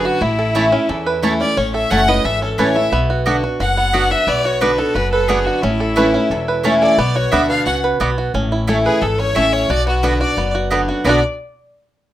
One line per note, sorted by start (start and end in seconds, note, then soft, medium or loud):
0.00 0.18 F#2 loud
0.00 0.20 D3 medium
0.00 0.18 B3 medium
0.00 0.20 B3 loud
0.00 0.20 D4 medium
0.00 0.21 F#4 loud
0.00 0.22 B4 medium
0.05 0.23 F#4 medium
0.05 0.22 F#4 medium
0.05 0.23 F#4 loud
0.21 0.74 A1 loud
0.21 0.86 A2 medium
0.21 0.55 E4 medium
0.21 1.23 E4 medium
0.39 0.89 A4 medium
0.55 0.72 E3 medium
0.55 0.64 A3 medium
0.55 0.72 A3 loud
0.55 0.72 C#4 medium
0.55 0.64 E4 loud
0.55 1.03 E4 medium
0.55 0.71 E4 medium
0.55 0.65 C#5 loud
0.55 0.65 A5 loud
0.72 1.20 C#4 medium
0.72 0.89 C#4 medium
0.72 0.88 E4 medium
0.89 1.54 E2 loud
0.89 1.42 E2 medium
0.89 1.37 A4 medium
1.06 1.54 B4 medium
1.22 1.39 E3 medium
1.22 1.32 A3 medium
1.22 1.40 A3 loud
1.22 1.40 C#4 medium
1.22 1.32 E4 loud
1.22 1.71 E4 medium
1.22 1.39 E4 loud
1.22 1.32 C#5 loud
1.22 1.32 A5 loud
1.40 1.56 C#4 medium
1.40 1.57 C#4 medium
1.40 1.56 E4 medium
1.40 1.59 D5 medium
1.57 1.83 A1 medium
1.57 2.21 A2 medium
1.57 1.90 C#4 medium
1.57 1.74 C#5 medium
1.57 1.73 C#5 medium
1.74 2.21 A4 medium
1.74 1.92 E5 medium
1.90 2.20 F#1 medium
1.90 2.07 E3 medium
1.90 2.00 A3 medium
1.90 2.08 A3 medium
1.90 2.38 C#4 medium
1.90 2.08 C#4 loud
1.90 2.00 E4 loud
1.90 2.07 E4 medium
1.90 2.00 C#5 medium
1.90 2.09 F#5 loud
1.90 2.10 F#5 loud
1.90 2.00 A5 loud
2.08 2.25 C#4 medium
2.08 2.24 E4 medium
2.08 2.55 B4 medium
2.08 2.26 D#5 medium
2.08 2.27 D#5 medium
2.25 2.53 G#1 medium
2.25 2.89 E2 medium
2.25 2.72 A4 medium
2.25 2.41 E5 medium
2.25 2.42 E5 medium
2.42 2.89 C#4 medium
2.42 2.60 A4 soft
2.42 2.60 A4 medium
2.58 2.87 A1 medium
2.58 2.75 E3 loud
2.58 2.67 A3 medium
2.58 2.75 A3 medium
2.58 2.76 C#4 loud
2.58 2.68 E4 medium
2.58 2.75 E4 loud
2.58 2.93 B4 medium
2.58 2.77 C#5 medium
2.58 2.68 C#5 medium
2.58 2.68 A5 medium
2.75 2.93 C#4 soft
2.75 2.92 E4 medium
2.75 2.93 A4 medium
2.75 2.92 E5 loud
2.75 2.92 E5 medium
2.92 3.45 B1 medium
2.92 3.57 B2 medium
2.92 3.77 B3 medium
3.10 3.27 F#4 medium
3.26 3.42 D3 medium
3.26 3.35 B3 medium
3.26 3.43 B3 medium
3.26 3.43 D4 loud
3.26 3.35 F#4 medium
3.26 3.43 F#4 medium
3.26 3.42 F#4 loud
3.26 3.35 D5 medium
3.26 3.35 F#5 medium
3.43 3.60 D4 medium
3.43 3.59 F#4 medium
3.60 4.12 F#1 medium
3.60 4.24 F#2 loud
3.60 3.93 F#4 medium
3.60 4.13 F#5 medium
3.60 4.13 F#5 loud
3.77 4.24 B3 medium
3.93 4.10 D3 medium
3.93 4.03 B3 medium
3.93 4.10 B3 loud
3.93 4.10 D4 loud
3.93 4.03 F#4 medium
3.93 4.10 F#4 medium
3.93 4.09 F#4 loud
3.93 4.03 D5 medium
3.93 4.03 F#5 medium
4.11 4.28 D4 soft
4.11 4.44 F#4 medium
4.11 4.29 E5 medium
4.11 4.30 E5 loud
4.27 4.80 B1 medium
4.27 4.92 B2 medium
4.27 4.75 B3 medium
4.27 4.46 D5 medium
4.27 4.48 D5 loud
4.44 4.92 F#4 medium
4.44 4.62 C#5 medium
4.44 4.63 C#5 medium
4.61 4.78 D3 medium
4.61 4.70 B3 medium
4.61 4.78 B3 medium
4.61 4.78 D4 loud
4.61 4.70 F#4 loud
4.61 4.77 F#4 medium
4.61 4.79 B4 medium
4.61 5.09 B4 medium
4.61 4.80 B4 medium
4.61 4.71 D5 loud
4.61 4.71 F#5 loud
4.78 5.26 B3 medium
4.78 4.96 D4 medium
4.78 4.95 F#4 medium
4.78 4.96 A4 medium
4.95 5.48 F#1 medium
4.95 5.60 F#2 medium
4.95 5.43 F#4 medium
4.95 5.11 B4 medium
5.11 5.31 A4 medium
5.11 5.29 A4 medium
5.11 5.60 B4 medium
5.28 5.61 D3 medium
5.28 5.38 B3 medium
5.28 5.62 B3 loud
5.28 5.63 B3 medium
5.28 5.62 D4 loud
5.28 5.38 F#4 medium
5.28 5.62 F#4 loud
5.28 5.47 G#4 medium
5.28 5.48 G#4 medium
5.28 5.38 D5 loud
5.28 5.38 F#5 loud
5.45 5.64 F#4 medium
5.45 5.65 F#4 medium
5.45 5.63 F#4 medium
5.63 6.16 A1 medium
5.63 6.27 A2 medium
5.63 6.11 C#4 medium
5.63 6.64 E4 medium
5.63 6.65 E4 medium
5.80 6.28 A4 medium
5.96 6.13 E3 medium
5.96 6.05 A3 medium
5.96 6.14 A3 loud
5.96 6.14 C#4 loud
5.96 6.06 E4 loud
5.96 6.13 E4 loud
5.96 6.44 B4 medium
5.96 6.06 C#5 loud
5.96 6.06 A5 loud
6.14 6.61 C#4 medium
6.14 6.31 C#4 soft
6.14 6.30 E4 medium
6.30 6.83 E1 medium
6.30 6.95 E2 medium
6.30 6.78 A4 medium
6.48 6.95 B4 medium
6.64 6.97 E3 medium
6.64 6.73 A3 medium
6.64 6.97 A3 loud
6.64 6.98 C#4 medium
6.64 6.97 C#4 loud
6.64 6.73 E4 loud
6.64 6.98 E4 loud
6.64 6.73 C#5 loud
6.64 6.74 A5 loud
6.81 6.99 A4 medium
6.81 6.99 D5 medium
6.98 7.24 B1 medium
6.98 7.63 B2 medium
6.98 7.46 B3 medium
6.98 7.17 D5 medium
7.16 7.63 F#4 medium
7.16 7.33 C#5 medium
7.16 7.34 C#5 medium
7.32 7.61 D2 medium
7.32 7.65 D3 medium
7.32 7.41 B3 medium
7.32 7.65 B3 medium
7.32 7.65 D4 loud
7.32 7.41 F#4 loud
7.32 7.65 F#4 medium
7.32 7.80 B4 medium
7.32 7.41 D5 medium
7.32 7.49 E5 medium
7.32 7.42 F#5 loud
7.49 7.97 B3 medium
7.49 7.65 F5 medium
7.65 7.95 C#2 medium
7.65 7.99 C#3 medium
7.65 8.14 F#4 medium
7.65 7.76 F#5 medium
7.65 7.82 F#5 medium
7.84 8.31 B4 medium
8.00 8.29 B1 medium
8.00 8.32 B2 loud
8.00 8.09 B3 medium
8.00 8.34 B3 medium
8.00 8.09 F#4 medium
8.00 8.09 D5 medium
8.00 8.10 F#5 medium
8.18 8.34 F#4 medium
8.34 8.87 A1 medium
8.34 8.99 A2 medium
8.34 8.82 C#4 medium
8.52 8.99 E4 medium
8.67 9.00 E3 medium
8.67 8.77 A3 medium
8.67 9.00 A3 loud
8.67 9.01 C#4 loud
8.67 8.77 E4 medium
8.67 9.01 E4 loud
8.67 9.01 A4 medium
8.67 8.77 C#5 medium
8.67 8.77 A5 loud
8.85 9.03 G#4 medium
8.85 9.33 B4 medium
9.01 9.31 G#1 medium
9.01 9.66 E2 medium
9.01 9.20 A4 medium
9.01 9.19 A4 medium
9.01 9.35 A4 medium
9.18 9.52 C#4 medium
9.18 9.36 C#5 medium
9.18 9.37 C#5 medium
9.35 9.65 A1 medium
9.35 9.68 E3 medium
9.35 9.44 A3 medium
9.35 9.68 A3 medium
9.35 9.69 C#4 medium
9.35 9.44 E4 medium
9.35 9.69 E4 loud
9.35 9.70 A4 medium
9.35 9.45 C#5 loud
9.35 9.54 E5 medium
9.35 9.54 E5 loud
9.35 9.45 A5 loud
9.52 9.70 C#4 medium
9.52 9.70 C#5 medium
9.52 9.73 C#5 loud
9.69 10.22 B1 medium
9.69 10.34 B2 medium
9.69 10.02 F#4 medium
9.69 9.86 D5 loud
9.69 9.87 D5 loud
9.86 10.34 B3 medium
9.86 10.05 F#4 medium
10.03 10.20 D3 medium
10.03 10.12 B3 medium
10.03 10.20 B3 medium
10.03 10.20 D4 medium
10.03 10.12 F#4 medium
10.03 10.20 F#4 medium
10.03 10.19 F#4 medium
10.03 10.19 B4 medium
10.03 10.21 B4 medium
10.03 10.13 D5 loud
10.03 10.13 F#5 loud
10.20 10.37 D4 medium
10.20 10.36 F#4 medium
10.20 10.54 F#4 medium
10.20 10.52 D5 medium
10.20 10.53 D5 medium
10.37 10.90 F#1 medium
10.37 11.02 F#2 medium
10.37 10.71 B3 medium
10.55 10.88 F#4 medium
10.71 10.88 D3 medium
10.71 10.80 B3 medium
10.71 10.88 B3 medium
10.71 11.04 B3 medium
10.71 10.88 D4 loud
10.71 10.80 F#4 loud
10.71 10.87 F#4 loud
10.71 10.80 D5 medium
10.71 10.80 F#5 loud
10.88 11.05 D4 medium
10.88 11.04 F#4 medium
10.88 11.05 F#4 medium
11.04 11.21 B1 loud
11.04 11.19 B2 medium
11.04 11.19 D3 medium
11.04 11.18 B3 medium
11.04 11.21 B3 medium
11.04 11.19 B3 medium
11.04 11.19 D4 loud
11.04 11.22 D4 medium
11.04 11.19 F#4 medium
11.04 11.20 F#4 medium
11.04 11.21 D5 medium
11.04 11.19 D5 medium
11.04 11.19 F#5 medium
11.09 11.23 F#4 medium